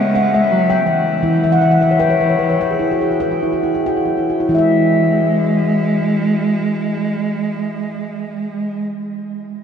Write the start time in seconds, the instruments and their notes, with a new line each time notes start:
Already playing: handpan C#3 E5, cello G#3
0.15 handpan F#5
0.34 handpan E5
0.51 cello F#3
0.70 handpan G5
0.86 cello E3, handpan G5
1.23 handpan E3 E4
1.43 handpan E5
1.52 handpan F#5
1.61 handpan E5
1.71 handpan F#5
1.81 handpan E5
1.91 handpan C#5
1.99 handpan B4 G5
2.10 handpan C#5
2.20 handpan B4
2.29 handpan C#5
2.39 handpan B4
2.50 handpan C#5
2.61 handpan B4 G5
2.71 handpan G#4
2.79 handpan E4
2.92 handpan F#4
3.01 handpan G#4
3.11 handpan F#4
3.20 handpan G#4 G5
3.31 handpan F#4
3.43 handpan E4
3.53 handpan F#4
3.63 handpan E4
3.75 handpan G#4
3.86 handpan F#4 G5
3.97 handpan E4
4.06 handpan F#4
4.18 handpan E4
4.30 handpan F#4
4.40 handpan E4
4.49 handpan E3 E4, cello G#3
4.55 handpan E5